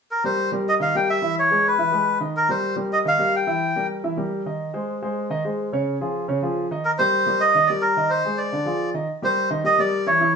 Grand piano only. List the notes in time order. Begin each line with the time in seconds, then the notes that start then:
0.24 G3 G4 A#4
0.52 G3 G4 A#4
0.80 D#3 D#4 D#5
0.95 G3 G4 A#4
1.22 E3 E4 E5
1.51 G#3 G#4 B4
1.78 E3 E4 E5
1.91 G#3 G#4 B4
2.20 D#3 D#4 D#5
2.49 G3 G4 A#4
2.76 G3 G4 A#4
3.05 D#3 D#4 D#5
3.19 G3 G4 A#4
3.47 E3 E4 E5
3.76 G3 G4 A#4
4.04 E3 E4 E5
4.17 G3 G4 A#4
4.46 D#3 D#4 D#5
4.74 G#3 G#4 C5
5.02 G#3 G#4 C5
5.30 D#3 D#4 D#5
5.45 G#3 G#4 C5
5.73 C#3 C#4 C#5
6.01 F3 F4 G#4
6.28 C#3 C#4 C#5
6.42 F3 F4 G#4
6.71 D#3 D#4 D#5
6.99 G3 G4 A#4
7.26 G3 G4 A#4
7.55 D#3 D#4 D#5
7.70 G3 G4 A#4
7.97 D#3 D#4 D#5
8.25 G#3 G#4 C5
8.52 D3 D4 D5
8.65 F3 F4 G#4
8.94 D#3 D#4 D#5
9.22 G3 G4 A#4
9.50 D#3 D#4 D#5
9.64 G3 G4 A#4
9.78 G3 G4 A#4
10.06 E3 E4 E5
10.20 E3 E4 E5